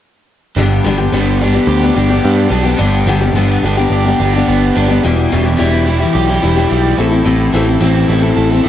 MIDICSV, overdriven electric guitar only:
0, 0, Header, 1, 2, 480
1, 0, Start_track
1, 0, Key_signature, 1, "major"
1, 0, Tempo, 557621
1, 486, Time_signature, 4, 2, 24, 8
1, 7478, End_track
2, 0, Start_track
2, 0, Title_t, "Overdriven electric guitar"
2, 0, Program_c, 0, 29
2, 487, Note_on_c, 0, 43, 62
2, 727, Note_on_c, 0, 50, 68
2, 982, Note_on_c, 0, 59, 60
2, 1220, Note_on_c, 0, 62, 61
2, 1448, Note_on_c, 0, 67, 70
2, 1684, Note_off_c, 0, 62, 0
2, 1688, Note_off_c, 0, 43, 0
2, 1695, Note_on_c, 0, 62, 61
2, 1929, Note_off_c, 0, 50, 0
2, 1931, Note_off_c, 0, 59, 0
2, 1934, Note_on_c, 0, 59, 60
2, 2154, Note_off_c, 0, 62, 0
2, 2164, Note_on_c, 0, 62, 66
2, 2411, Note_on_c, 0, 43, 68
2, 2647, Note_on_c, 0, 50, 66
2, 2896, Note_off_c, 0, 59, 0
2, 2900, Note_on_c, 0, 59, 63
2, 3134, Note_off_c, 0, 62, 0
2, 3145, Note_on_c, 0, 62, 59
2, 3375, Note_off_c, 0, 67, 0
2, 3378, Note_on_c, 0, 67, 70
2, 3604, Note_off_c, 0, 62, 0
2, 3611, Note_off_c, 0, 43, 0
2, 3615, Note_on_c, 0, 62, 60
2, 3849, Note_off_c, 0, 50, 0
2, 3853, Note_off_c, 0, 59, 0
2, 3864, Note_on_c, 0, 59, 59
2, 4092, Note_off_c, 0, 62, 0
2, 4102, Note_on_c, 0, 62, 63
2, 4331, Note_on_c, 0, 40, 66
2, 4334, Note_off_c, 0, 67, 0
2, 4336, Note_off_c, 0, 62, 0
2, 4337, Note_off_c, 0, 59, 0
2, 4578, Note_on_c, 0, 47, 62
2, 4804, Note_on_c, 0, 55, 67
2, 5042, Note_on_c, 0, 64, 60
2, 5279, Note_on_c, 0, 67, 74
2, 5517, Note_off_c, 0, 64, 0
2, 5528, Note_on_c, 0, 64, 59
2, 5530, Note_off_c, 0, 40, 0
2, 5752, Note_off_c, 0, 55, 0
2, 5762, Note_on_c, 0, 55, 59
2, 5774, Note_off_c, 0, 47, 0
2, 6004, Note_off_c, 0, 67, 0
2, 6005, Note_on_c, 0, 45, 63
2, 6006, Note_off_c, 0, 55, 0
2, 6008, Note_off_c, 0, 64, 0
2, 6228, Note_off_c, 0, 45, 0
2, 6238, Note_on_c, 0, 45, 64
2, 6483, Note_on_c, 0, 52, 64
2, 6724, Note_on_c, 0, 60, 66
2, 6967, Note_on_c, 0, 64, 58
2, 7198, Note_on_c, 0, 69, 71
2, 7424, Note_off_c, 0, 64, 0
2, 7435, Note_on_c, 0, 64, 62
2, 7442, Note_off_c, 0, 45, 0
2, 7478, Note_off_c, 0, 52, 0
2, 7478, Note_off_c, 0, 60, 0
2, 7478, Note_off_c, 0, 64, 0
2, 7478, Note_off_c, 0, 69, 0
2, 7478, End_track
0, 0, End_of_file